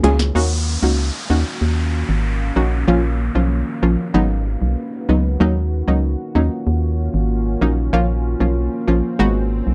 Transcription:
0.03 fm bass C#2, synth pluck G#3 C#4 F4 G#4, closed hi-hat, low bongo
0.19 snare
0.35 fm bass D#2, ambient pad D#3 A#3 C#4 F#4 F5, synth pluck A#3 C#4 D#4 F#4, downlifter
0.82 fm bass C#2, synth pluck A#3 C#4 D#4 F#4
1.30 fm bass D#2, synth pluck A#3 C#4 D#4 F#4
1.61 fm bass D#2
2.09 fm bass G#1
2.56 fm bass A#1, synth pluck A#3 C#4 D#4 F#4
2.88 fm bass A#1, synth pluck F3 A#3 C#4 F4
3.35 fm bass B1, synth pluck F3 A#3 C#4 F4
3.82 fm bass A#1, synth pluck F3 A#3 C#4 F4
4.14 fm bass G#1, synth pluck F#3 G#3 B3 D#4, ambient pad F#4
4.62 fm bass B1
5.09 fm bass C#2, synth pluck F#3 G#3 B3 D#4
5.40 fm bass D#2, ambient pad D#3 A#3 C#4 F4, synth pluck F#3 A#3 C#4 D#4, swell
5.88 fm bass C#2, synth pluck F#3 A#3 C#4 D#4
6.35 fm bass D#2, synth pluck F#3 A#3 C#4 D#4
6.67 fm bass D#2
7.14 fm bass G#1
7.61 fm bass A#1, synth pluck F#3 A#3 C#4 D#4
7.93 fm bass A#1, synth pluck F3 A#3 C#4 F4
8.40 fm bass B1, synth pluck F3 A#3 C#4 F4
8.88 fm bass A#1, synth pluck F3 A#3 C#4 F4
9.19 fm bass G#1, synth pluck G#3 B3 D#4 F#4
9.67 fm bass B1

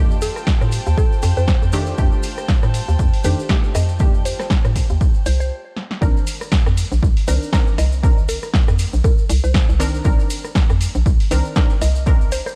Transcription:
Already playing: fm bass F2, synth stab D#3 A3 D4 G4, string section F4 C5 G5 A5, string machine G4 G5
0.11 shaker
0.22 synth pluck A4, open hi-hat, shaker
0.36 cross-stick, shaker
0.47 kick, snare, shaker
0.61 fm bass A2, cross-stick, shaker
0.72 open hi-hat, shaker
0.86 fm bass D#2, shaker
0.97 synth pluck A4, kick, shaker
1.12 shaker
1.22 fm bass F2, open hi-hat, shaker
1.37 fm bass F2, synth pluck C5, shaker
1.48 kick, snare, shaker
1.62 fm bass F2, shaker
1.72 synth stab D#3 A3 D4 G4, open hi-hat, shaker
1.86 shaker
1.98 fm bass F2, synth stab D#3 A3 D4 G4, kick, shaker
2.12 shaker
2.23 open hi-hat, shaker
2.37 cross-stick, shaker
2.48 kick, snare, shaker
2.63 fm bass A2, cross-stick, shaker
2.74 open hi-hat, shaker
2.88 fm bass D#2, shaker
2.99 fm bass F2, kick, shaker
3.13 open hi-hat, shaker
3.24 fm bass F2, synth stab D#3 A3 D4 G4, synth pluck C5, open hi-hat, shaker
3.39 shaker
3.49 synth stab D#3 A3 D4 G4, kick, snare, shaker
3.63 shaker
3.75 fm bass F2, synth pluck D#5, cross-stick, open hi-hat, shaker
3.89 shaker
3.99 synth stab D#3 A3 D4 G4, kick, shaker
4.14 shaker
4.25 synth pluck C5, open hi-hat, shaker
4.39 synth pluck C5, cross-stick, snare, shaker
4.50 kick, snare, shaker
4.65 fm bass A2, cross-stick, shaker
4.76 kick, open hi-hat, shaker
4.90 fm bass D#2, shaker
5.01 kick, shaker
5.14 shaker
5.26 fm bass C2, synth pluck C5, open hi-hat, shaker
5.40 synth pluck C5, shaker
5.77 snare
5.91 snare
6.01 fm bass C2, synth stab D#3 C4 D4 A#4, kick, shaker
6.17 shaker
6.27 open hi-hat, shaker
6.41 cross-stick, shaker
6.52 kick, snare, shaker
6.66 fm bass F2, cross-stick, shaker
6.77 open hi-hat, shaker
6.92 fm bass A#1, shaker
7.03 fm bass C2, kick, shaker
7.17 open hi-hat, shaker
7.27 fm bass C2, synth stab D#3 C4 D4 A#4, synth pluck C5, open hi-hat, shaker
7.43 shaker
7.53 synth stab D#3 C4 D4 A#4, kick, snare, shaker
7.67 shaker
7.78 fm bass C2, synth pluck D#5, cross-stick, open hi-hat, shaker
7.92 shaker
8.03 synth stab D#3 C4 D4 A#4, kick, shaker
8.18 shaker
8.29 synth pluck A#4, open hi-hat, shaker
8.43 cross-stick, shaker
8.54 kick, snare, shaker
8.68 fm bass F2, cross-stick, shaker
8.79 open hi-hat, shaker
8.93 fm bass A#1, shaker
9.04 synth pluck A#4, kick, shaker
9.18 shaker
9.29 fm bass C2, open hi-hat, shaker
9.44 fm bass C2, synth pluck C5, shaker
9.54 kick, snare, shaker
9.69 fm bass C2, shaker
9.80 synth stab D#3 C4 D4 A#4, open hi-hat, shaker
9.94 shaker
10.04 fm bass C2, synth stab D#3 C4 D4 A#4, kick, shaker
10.19 shaker
10.30 open hi-hat, shaker
10.44 cross-stick, shaker
10.55 kick, snare, shaker
10.70 fm bass F2, cross-stick, shaker
10.81 open hi-hat, shaker
10.95 fm bass A#1, shaker
11.06 fm bass C2, kick, shaker
11.20 open hi-hat, shaker
11.31 fm bass C2, synth stab D#3 C4 D4 A#4, synth pluck C5, open hi-hat, shaker
11.45 shaker
11.56 synth stab D#3 C4 D4 A#4, kick, snare, shaker
11.70 shaker
11.81 fm bass C2, synth pluck D#5, cross-stick, open hi-hat, shaker
11.95 shaker
12.06 synth stab D#3 C4 D4 A#4, kick, shaker
12.21 shaker
12.32 synth pluck C5, open hi-hat, shaker
12.46 synth pluck C5, cross-stick, shaker

